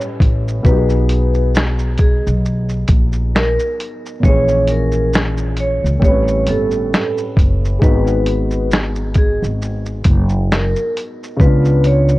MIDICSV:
0, 0, Header, 1, 5, 480
1, 0, Start_track
1, 0, Tempo, 895522
1, 350, Time_signature, 4, 2, 24, 8
1, 6533, End_track
2, 0, Start_track
2, 0, Title_t, "Vibraphone"
2, 0, Program_c, 0, 11
2, 356, Note_on_c, 0, 71, 94
2, 811, Note_off_c, 0, 71, 0
2, 1074, Note_on_c, 0, 68, 77
2, 1197, Note_off_c, 0, 68, 0
2, 1796, Note_on_c, 0, 70, 69
2, 2011, Note_off_c, 0, 70, 0
2, 2278, Note_on_c, 0, 73, 104
2, 2493, Note_off_c, 0, 73, 0
2, 2521, Note_on_c, 0, 70, 77
2, 2734, Note_off_c, 0, 70, 0
2, 3002, Note_on_c, 0, 73, 71
2, 3122, Note_off_c, 0, 73, 0
2, 3240, Note_on_c, 0, 73, 81
2, 3454, Note_off_c, 0, 73, 0
2, 3480, Note_on_c, 0, 69, 77
2, 3833, Note_off_c, 0, 69, 0
2, 4196, Note_on_c, 0, 71, 98
2, 4651, Note_off_c, 0, 71, 0
2, 4920, Note_on_c, 0, 68, 75
2, 5041, Note_off_c, 0, 68, 0
2, 5642, Note_on_c, 0, 70, 63
2, 5855, Note_off_c, 0, 70, 0
2, 6115, Note_on_c, 0, 71, 95
2, 6353, Note_off_c, 0, 71, 0
2, 6358, Note_on_c, 0, 73, 78
2, 6533, Note_off_c, 0, 73, 0
2, 6533, End_track
3, 0, Start_track
3, 0, Title_t, "Felt piano"
3, 0, Program_c, 1, 0
3, 0, Control_c, 1, 64, 127
3, 0, Note_on_c, 1, 45, 71
3, 0, Note_on_c, 1, 55, 67
3, 0, Note_on_c, 1, 61, 63
3, 0, Note_on_c, 1, 71, 70
3, 322, Note_off_c, 1, 45, 0
3, 330, Note_off_c, 1, 55, 0
3, 338, Note_off_c, 1, 61, 0
3, 339, Note_on_c, 1, 59, 67
3, 344, Note_off_c, 1, 71, 0
3, 351, Note_on_c, 1, 54, 59
3, 357, Control_c, 1, 64, 0
3, 366, Note_on_c, 1, 63, 67
3, 380, Note_on_c, 1, 67, 61
3, 406, Note_off_c, 1, 67, 0
3, 416, Note_on_c, 1, 68, 72
3, 458, Control_c, 1, 64, 127
3, 2243, Note_off_c, 1, 59, 0
3, 2249, Note_off_c, 1, 54, 0
3, 2250, Note_on_c, 1, 46, 63
3, 2256, Note_off_c, 1, 63, 0
3, 2269, Note_on_c, 1, 52, 63
3, 2276, Control_c, 1, 64, 0
3, 2280, Note_on_c, 1, 61, 60
3, 2281, Note_off_c, 1, 68, 0
3, 2296, Note_on_c, 1, 68, 74
3, 2382, Control_c, 1, 64, 127
3, 3201, Note_off_c, 1, 46, 0
3, 3210, Note_off_c, 1, 52, 0
3, 3213, Note_on_c, 1, 45, 66
3, 3216, Note_off_c, 1, 61, 0
3, 3224, Note_off_c, 1, 68, 0
3, 3231, Note_on_c, 1, 55, 56
3, 3237, Control_c, 1, 64, 0
3, 3243, Note_on_c, 1, 60, 51
3, 3258, Note_on_c, 1, 71, 77
3, 3277, Note_off_c, 1, 60, 0
3, 3279, Note_on_c, 1, 61, 56
3, 3317, Control_c, 1, 64, 127
3, 4162, Note_off_c, 1, 45, 0
3, 4171, Note_off_c, 1, 55, 0
3, 4174, Note_on_c, 1, 56, 67
3, 4185, Note_off_c, 1, 71, 0
3, 4187, Note_on_c, 1, 63, 60
3, 4196, Note_off_c, 1, 61, 0
3, 4198, Control_c, 1, 64, 0
3, 4203, Note_on_c, 1, 66, 58
3, 4218, Note_on_c, 1, 59, 73
3, 4298, Control_c, 1, 64, 127
3, 6081, Note_off_c, 1, 56, 0
3, 6087, Note_off_c, 1, 63, 0
3, 6092, Note_on_c, 1, 49, 64
3, 6095, Note_off_c, 1, 66, 0
3, 6098, Note_off_c, 1, 59, 0
3, 6106, Note_on_c, 1, 59, 60
3, 6118, Control_c, 1, 64, 0
3, 6123, Note_on_c, 1, 65, 60
3, 6137, Note_on_c, 1, 62, 73
3, 6214, Control_c, 1, 64, 127
3, 6533, Note_off_c, 1, 49, 0
3, 6533, Note_off_c, 1, 59, 0
3, 6533, Note_off_c, 1, 62, 0
3, 6533, Note_off_c, 1, 65, 0
3, 6533, End_track
4, 0, Start_track
4, 0, Title_t, "Upright bass"
4, 0, Program_c, 2, 32
4, 112, Note_on_c, 2, 33, 98
4, 339, Note_off_c, 2, 33, 0
4, 350, Note_on_c, 2, 35, 103
4, 1188, Note_off_c, 2, 35, 0
4, 1215, Note_on_c, 2, 35, 89
4, 1536, Note_off_c, 2, 35, 0
4, 1549, Note_on_c, 2, 34, 90
4, 1909, Note_off_c, 2, 34, 0
4, 2273, Note_on_c, 2, 34, 98
4, 3109, Note_off_c, 2, 34, 0
4, 3131, Note_on_c, 2, 37, 77
4, 3226, Note_off_c, 2, 37, 0
4, 3230, Note_on_c, 2, 33, 97
4, 3458, Note_off_c, 2, 33, 0
4, 3474, Note_on_c, 2, 31, 88
4, 3700, Note_off_c, 2, 31, 0
4, 3952, Note_on_c, 2, 30, 81
4, 4179, Note_off_c, 2, 30, 0
4, 4196, Note_on_c, 2, 32, 102
4, 5030, Note_off_c, 2, 32, 0
4, 5052, Note_on_c, 2, 32, 81
4, 5374, Note_off_c, 2, 32, 0
4, 5390, Note_on_c, 2, 30, 95
4, 5750, Note_off_c, 2, 30, 0
4, 6112, Note_on_c, 2, 37, 108
4, 6533, Note_off_c, 2, 37, 0
4, 6533, End_track
5, 0, Start_track
5, 0, Title_t, "Drums"
5, 4, Note_on_c, 9, 82, 45
5, 58, Note_off_c, 9, 82, 0
5, 108, Note_on_c, 9, 36, 88
5, 116, Note_on_c, 9, 42, 57
5, 116, Note_on_c, 9, 82, 42
5, 161, Note_off_c, 9, 36, 0
5, 170, Note_off_c, 9, 42, 0
5, 170, Note_off_c, 9, 82, 0
5, 259, Note_on_c, 9, 82, 43
5, 312, Note_off_c, 9, 82, 0
5, 348, Note_on_c, 9, 36, 99
5, 352, Note_on_c, 9, 82, 45
5, 402, Note_off_c, 9, 36, 0
5, 406, Note_off_c, 9, 82, 0
5, 481, Note_on_c, 9, 82, 43
5, 534, Note_off_c, 9, 82, 0
5, 585, Note_on_c, 9, 42, 60
5, 585, Note_on_c, 9, 82, 43
5, 639, Note_off_c, 9, 42, 0
5, 639, Note_off_c, 9, 82, 0
5, 719, Note_on_c, 9, 82, 52
5, 773, Note_off_c, 9, 82, 0
5, 830, Note_on_c, 9, 82, 70
5, 841, Note_on_c, 9, 38, 109
5, 883, Note_off_c, 9, 82, 0
5, 895, Note_off_c, 9, 38, 0
5, 959, Note_on_c, 9, 82, 40
5, 1013, Note_off_c, 9, 82, 0
5, 1059, Note_on_c, 9, 42, 49
5, 1059, Note_on_c, 9, 82, 36
5, 1067, Note_on_c, 9, 36, 87
5, 1113, Note_off_c, 9, 42, 0
5, 1113, Note_off_c, 9, 82, 0
5, 1121, Note_off_c, 9, 36, 0
5, 1217, Note_on_c, 9, 82, 47
5, 1270, Note_off_c, 9, 82, 0
5, 1315, Note_on_c, 9, 82, 64
5, 1369, Note_off_c, 9, 82, 0
5, 1442, Note_on_c, 9, 82, 42
5, 1496, Note_off_c, 9, 82, 0
5, 1543, Note_on_c, 9, 42, 72
5, 1543, Note_on_c, 9, 82, 50
5, 1547, Note_on_c, 9, 36, 92
5, 1596, Note_off_c, 9, 42, 0
5, 1596, Note_off_c, 9, 82, 0
5, 1601, Note_off_c, 9, 36, 0
5, 1675, Note_on_c, 9, 82, 36
5, 1729, Note_off_c, 9, 82, 0
5, 1799, Note_on_c, 9, 82, 63
5, 1800, Note_on_c, 9, 38, 108
5, 1852, Note_off_c, 9, 82, 0
5, 1853, Note_off_c, 9, 38, 0
5, 1927, Note_on_c, 9, 82, 47
5, 1980, Note_off_c, 9, 82, 0
5, 2039, Note_on_c, 9, 42, 56
5, 2039, Note_on_c, 9, 82, 37
5, 2092, Note_off_c, 9, 42, 0
5, 2092, Note_off_c, 9, 82, 0
5, 2177, Note_on_c, 9, 82, 36
5, 2231, Note_off_c, 9, 82, 0
5, 2269, Note_on_c, 9, 36, 106
5, 2274, Note_on_c, 9, 82, 49
5, 2323, Note_off_c, 9, 36, 0
5, 2328, Note_off_c, 9, 82, 0
5, 2403, Note_on_c, 9, 82, 38
5, 2456, Note_off_c, 9, 82, 0
5, 2506, Note_on_c, 9, 42, 54
5, 2506, Note_on_c, 9, 82, 46
5, 2559, Note_off_c, 9, 42, 0
5, 2559, Note_off_c, 9, 82, 0
5, 2636, Note_on_c, 9, 82, 50
5, 2690, Note_off_c, 9, 82, 0
5, 2751, Note_on_c, 9, 82, 65
5, 2762, Note_on_c, 9, 38, 112
5, 2805, Note_off_c, 9, 82, 0
5, 2816, Note_off_c, 9, 38, 0
5, 2880, Note_on_c, 9, 82, 45
5, 2934, Note_off_c, 9, 82, 0
5, 2984, Note_on_c, 9, 42, 47
5, 2984, Note_on_c, 9, 82, 35
5, 3038, Note_off_c, 9, 42, 0
5, 3038, Note_off_c, 9, 82, 0
5, 3140, Note_on_c, 9, 82, 45
5, 3193, Note_off_c, 9, 82, 0
5, 3227, Note_on_c, 9, 36, 93
5, 3238, Note_on_c, 9, 82, 59
5, 3281, Note_off_c, 9, 36, 0
5, 3292, Note_off_c, 9, 82, 0
5, 3366, Note_on_c, 9, 82, 44
5, 3420, Note_off_c, 9, 82, 0
5, 3467, Note_on_c, 9, 42, 64
5, 3467, Note_on_c, 9, 82, 54
5, 3520, Note_off_c, 9, 42, 0
5, 3520, Note_off_c, 9, 82, 0
5, 3598, Note_on_c, 9, 82, 36
5, 3651, Note_off_c, 9, 82, 0
5, 3719, Note_on_c, 9, 82, 66
5, 3720, Note_on_c, 9, 38, 121
5, 3773, Note_off_c, 9, 82, 0
5, 3774, Note_off_c, 9, 38, 0
5, 3847, Note_on_c, 9, 82, 42
5, 3901, Note_off_c, 9, 82, 0
5, 3950, Note_on_c, 9, 36, 97
5, 3960, Note_on_c, 9, 42, 54
5, 3960, Note_on_c, 9, 82, 35
5, 4003, Note_off_c, 9, 36, 0
5, 4014, Note_off_c, 9, 42, 0
5, 4014, Note_off_c, 9, 82, 0
5, 4100, Note_on_c, 9, 82, 40
5, 4154, Note_off_c, 9, 82, 0
5, 4191, Note_on_c, 9, 36, 100
5, 4197, Note_on_c, 9, 82, 49
5, 4244, Note_off_c, 9, 36, 0
5, 4250, Note_off_c, 9, 82, 0
5, 4326, Note_on_c, 9, 82, 37
5, 4380, Note_off_c, 9, 82, 0
5, 4428, Note_on_c, 9, 42, 61
5, 4428, Note_on_c, 9, 82, 44
5, 4482, Note_off_c, 9, 42, 0
5, 4482, Note_off_c, 9, 82, 0
5, 4561, Note_on_c, 9, 82, 45
5, 4615, Note_off_c, 9, 82, 0
5, 4671, Note_on_c, 9, 82, 77
5, 4682, Note_on_c, 9, 38, 105
5, 4724, Note_off_c, 9, 82, 0
5, 4736, Note_off_c, 9, 38, 0
5, 4800, Note_on_c, 9, 82, 50
5, 4853, Note_off_c, 9, 82, 0
5, 4901, Note_on_c, 9, 42, 46
5, 4901, Note_on_c, 9, 82, 37
5, 4907, Note_on_c, 9, 36, 85
5, 4955, Note_off_c, 9, 42, 0
5, 4955, Note_off_c, 9, 82, 0
5, 4961, Note_off_c, 9, 36, 0
5, 5059, Note_on_c, 9, 82, 48
5, 5113, Note_off_c, 9, 82, 0
5, 5156, Note_on_c, 9, 82, 57
5, 5210, Note_off_c, 9, 82, 0
5, 5283, Note_on_c, 9, 82, 48
5, 5337, Note_off_c, 9, 82, 0
5, 5383, Note_on_c, 9, 42, 72
5, 5383, Note_on_c, 9, 82, 50
5, 5387, Note_on_c, 9, 36, 94
5, 5437, Note_off_c, 9, 42, 0
5, 5437, Note_off_c, 9, 82, 0
5, 5441, Note_off_c, 9, 36, 0
5, 5517, Note_on_c, 9, 82, 38
5, 5571, Note_off_c, 9, 82, 0
5, 5639, Note_on_c, 9, 82, 70
5, 5640, Note_on_c, 9, 38, 116
5, 5692, Note_off_c, 9, 82, 0
5, 5693, Note_off_c, 9, 38, 0
5, 5768, Note_on_c, 9, 82, 41
5, 5821, Note_off_c, 9, 82, 0
5, 5879, Note_on_c, 9, 42, 55
5, 5879, Note_on_c, 9, 82, 38
5, 5933, Note_off_c, 9, 42, 0
5, 5933, Note_off_c, 9, 82, 0
5, 6021, Note_on_c, 9, 82, 39
5, 6075, Note_off_c, 9, 82, 0
5, 6108, Note_on_c, 9, 36, 116
5, 6113, Note_on_c, 9, 82, 55
5, 6162, Note_off_c, 9, 36, 0
5, 6167, Note_off_c, 9, 82, 0
5, 6244, Note_on_c, 9, 82, 38
5, 6297, Note_off_c, 9, 82, 0
5, 6346, Note_on_c, 9, 42, 55
5, 6346, Note_on_c, 9, 82, 42
5, 6400, Note_off_c, 9, 42, 0
5, 6400, Note_off_c, 9, 82, 0
5, 6478, Note_on_c, 9, 82, 47
5, 6531, Note_off_c, 9, 82, 0
5, 6533, End_track
0, 0, End_of_file